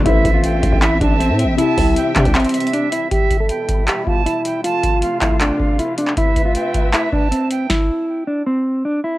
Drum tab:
HH |x-----------x-----------x-----------x-----------x-----------x-----------x-----------x-----------|x-----------o-----------x-----------x-----x-----x--x--x--x--x---x---x---x-----------x-----------|x-----------x-----------x-----------x-----------x-----------------------x-----------x-----------|x-----------x-----------x-----------x-----------x-----------------------x-----------x-----------|
CP |------------------------------------------------x-----------------------------------------------|------------------------------------x-----------x-----------------------------------------------|------------------------------------------------x-----------------------------------------------|------------------------------------x-----------x-----------------------------------------x-----|
SD |------------------------------------------------------------------------------------------------|------------------------------------------------------------------------------------------------|------------------------------------------------------------------------------------------------|------------------------------------------------------------------------------------------------|
BD |o-----------o-----------------------o-----o-----------------o-----------------------------------|------------o-----------------------o-----o-----------------------------------------------------|o-----------o-----------------------o-----------------------o-----------------------------------|------------o-----------------------o-----o-----------------o-----------------------------------|

HH |x-----------x-----------x-----------x-----------x-----------------------x-----------x-----------|------------------------------------------------------------------------------------------------|
CP |------------------------------------------------x-----------------------------------------------|------------------------------------------------------------------------------------------------|
SD |------------------------------------------------------------------------------------------------|o-----------------------------------------------------------------------------------------------|
BD |o-----------o-----------------------o-----------------------o-----------------------------------|o-----------------------------------------------------------------------------------------------|